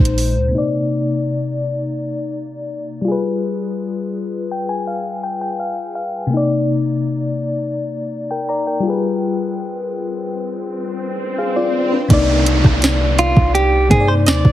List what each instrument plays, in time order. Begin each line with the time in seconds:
Already playing: fm electric piano A#2 G#3 D#4 C5
0.00 808-style bass A#1
0.05 closed hi-hat
0.18 open hi-hat
0.35 808-style bass D2
0.48 fm electric piano C3 A#3
0.55 fm electric piano D#4 D5
3.01 fm electric piano G3 F4
3.08 fm electric piano G#4 B4
4.51 fm electric piano G5
4.69 fm electric piano G#5
4.87 fm electric piano F5
5.23 fm electric piano G5
5.41 fm electric piano G5
5.59 fm electric piano F5
5.95 fm electric piano F5
6.27 fm electric piano C3 A#3
6.32 fm electric piano D#4, swell
6.37 fm electric piano D5
8.31 fm electric piano A#4 G5
8.49 fm electric piano D5 A#5
8.67 fm electric piano A#4 G5
8.80 fm electric piano G3 F4
8.87 fm electric piano G#4 B4
11.38 fm electric piano G#4 F5
11.56 fm electric piano F4 D5
11.92 fm electric piano D4 B4
12.08 808-style bass C2, fm electric piano C3 A#3 D#4, kick, closed hi-hat, downlifter
12.13 fm electric piano D5
12.46 closed hi-hat
12.64 808-style bass C2, kick, cross-stick
12.82 snare, closed hi-hat
13.19 clean electric guitar F4, closed hi-hat
13.37 808-style bass C2, kick
13.55 clean electric guitar G4, closed hi-hat
13.89 808-style bass G2, fm electric piano C3 A#3 D#4, clean electric guitar G#4, kick, closed hi-hat
13.94 fm electric piano C5
14.00 fm electric piano D5
14.08 clean electric guitar C5
14.26 808-style bass D#2, clean electric guitar D5, snare, closed hi-hat
14.45 808-style bass C2, kick